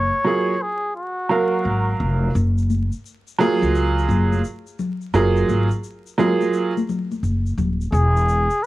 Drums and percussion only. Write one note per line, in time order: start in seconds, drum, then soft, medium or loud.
2.35 shaker soft
2.58 shaker soft
2.70 high conga soft
2.70 shaker soft
2.92 shaker soft
3.06 shaker medium
3.27 shaker soft
3.41 high conga medium
3.41 low conga medium
3.41 shaker soft
3.62 shaker soft
3.75 shaker medium
3.98 shaker soft
4.10 low conga medium
4.10 shaker soft
4.33 high conga medium
4.33 shaker soft
4.44 shaker medium
4.67 shaker soft
4.79 low conga medium
4.79 shaker soft
5.01 shaker soft
5.14 shaker medium
5.36 shaker soft
5.49 high conga soft
5.49 shaker soft
5.71 shaker soft
5.84 shaker medium
6.07 shaker soft
6.19 high conga medium
6.19 low conga medium
6.19 shaker soft
6.41 high conga soft
6.41 shaker soft
6.53 shaker medium
6.77 high conga medium
6.77 shaker soft
6.89 low conga medium
6.89 shaker soft
7.11 high conga soft
7.11 shaker soft
7.24 shaker medium
7.46 shaker soft
7.58 low conga medium
7.58 shaker soft
7.81 shaker soft
7.94 shaker medium
8.17 shaker soft
8.29 shaker medium
8.50 shaker soft